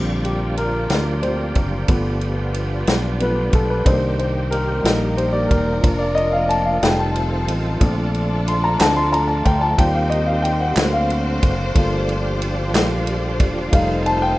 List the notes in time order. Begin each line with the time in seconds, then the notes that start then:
Already playing: A#1 D3 F3 G3 A#3 C4 D4 F4 G4
0.25 G4, ride bell
0.57 A#4, ride bell
0.90 D2, snare, ride bell
1.22 D3 G3 C4 C5, ride bell
1.55 F#1, kick, ride bell
1.88 G1 F3 G3 A3 B3 D4 F4, kick, ride bell
2.21 ride bell
2.54 ride bell
2.87 B1, snare, ride bell
3.20 F3 A3 B3 B4, ride bell
3.53 B1 A4, kick, ride bell
3.70 B4
3.85 C2 D#3 A#3 C4 D4 G4 C5, kick, ride bell
4.19 C5, ride bell
4.51 A#4, ride bell
4.83 A#1 G3 A#3 D#4 A#4, snare, ride bell
5.17 C5, ride bell
5.33 D5
5.48 E1 A#4, kick, ride bell
5.81 F1 F3 A#3 D4, kick, ride bell
5.86 D4 F4
5.99 D5
6.15 D#5, ride bell
6.32 F5
6.49 A5, ride bell
6.65 F5
6.82 F1 D#3 F3 G3 A3 C4 D#4 F4 A4 G5, snare, ride bell
6.99 A5
7.16 ride bell
7.47 A1, ride bell
7.80 A#1 D3 A3 C4 D4 F4 A4, kick, ride bell
8.14 ride bell
8.48 C6, ride bell
8.64 A#5
8.79 D2 A3 C4 D4 A5, snare, clap, ride bell
8.96 C6
9.13 A#5, ride bell
9.28 A5
9.45 D2 G5, kick, ride bell
9.61 A5
9.77 D#2 D#3 G3 A#3 C4 D#4 F4 G4 C5 G5, kick, ride bell
9.94 F5
10.10 D#5, ride bell
10.26 F5
10.42 G5, ride bell
10.60 F#5
10.76 D2 D3 F#3 A#3 C4 D4 F#4 F5, snare, clap, ride bell
10.93 F5
11.10 ride bell
11.43 F#1, kick, ride bell
11.75 G1 F3 G3 A3 A#3 D4 F4 G4, kick, ride bell
12.09 ride bell
12.42 ride bell
12.73 A#1 A3 A#3 F4, snare, clap, ride bell
13.07 ride bell
13.40 E1, kick, ride bell
13.71 F1 D#3 G3 A3 C4 D#4 A4 C5 F5, kick, ride bell
14.06 A5, ride bell
14.22 G5